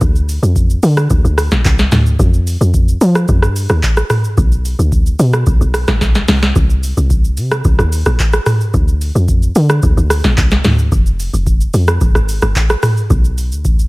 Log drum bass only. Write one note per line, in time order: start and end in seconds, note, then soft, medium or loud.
0.01 0.39 D2 loud
0.43 0.79 F2 medium
0.83 1.08 D3 loud
1.10 1.23 D2 loud
1.24 1.49 D2 medium
1.52 1.64 A#1 medium
1.65 1.90 C2 loud
1.92 2.17 D2 medium
2.19 2.57 F2 loud
2.61 2.97 F2 loud
3.01 3.26 F3 medium
3.29 3.44 F2 loud
3.43 3.67 G2 medium
3.70 3.82 D#2 medium
4.38 4.75 B1 loud
4.79 5.16 D2 medium
5.19 5.44 B2 loud
5.47 5.60 B1 loud
5.61 5.86 B1 loud
5.88 6.03 A1 medium
6.01 6.26 B1 medium
6.28 6.53 C2 loud
6.56 6.93 C2 loud
6.97 7.39 C2 medium
7.38 7.62 C3 loud
7.65 7.78 C2 loud
7.79 8.04 D#2 medium
8.06 8.18 A#1 medium
8.74 9.11 D2 loud
9.15 9.52 F2 medium
9.56 9.80 D3 loud
9.83 9.96 D2 loud
9.97 10.22 D2 loud
10.24 10.36 A#1 medium
10.38 10.62 C2 loud
10.65 10.89 D2 medium
10.92 11.30 F1 loud
11.34 11.70 F1 medium
11.74 11.99 F2 loud
12.01 12.14 G1 medium
12.15 12.40 G#1 medium
12.43 12.54 G1 medium
13.10 13.53 B1 loud
13.52 13.88 D2 medium